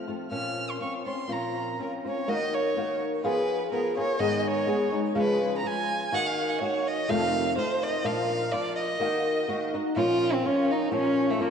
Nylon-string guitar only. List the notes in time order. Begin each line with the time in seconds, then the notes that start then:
0.07 F3 A3 C4 F4
0.30 A#2 F3 C4 C#4 F4
0.79 F3 C4 C#4 F4
1.05 C4 C#4 F4
1.28 A#2 F3 C4 C#4 F4
1.79 F3 C4 C#4 F4
2.04 C4 C#4 F4
2.27 D#3 A#3 D#4 F#4
2.76 D#3 A#3 D#4 F#4
3.24 F3 B3 F4 G#4
3.71 F3 B3 F4 G#4
3.97 B3 F4 G#4
4.19 G#2 D#3 G#3 B3 D#4 G#4
4.66 G#3 B3 D#4 G#4
4.92 G#3 B3 D#4 G#4
5.15 C#3 F3 G#3 C#4 F4
5.64 F3 G#3 C#4 F4
6.12 D#3 A#3 D#4 F#4
6.61 D#3 A#3 D#4 F#4
7.08 F2 C3 D#3 A3 D#4 F4
7.56 D#3 A3 D#4 F4
8.04 A#2 F3 A#3 D4 F4
8.52 F3 A#3 D4 F4
8.99 D#3 A#3 D#4 F#4
9.48 D#3 A#3 D#4 F#4
9.74 A#3 D#4 F#4
9.96 A#2 F3 A#3 C#4 F4
10.44 F3 A#3 C#4 F4
10.91 A#2 F3 A#3 C#4 F4
11.38 F3 A#3 C#4 F4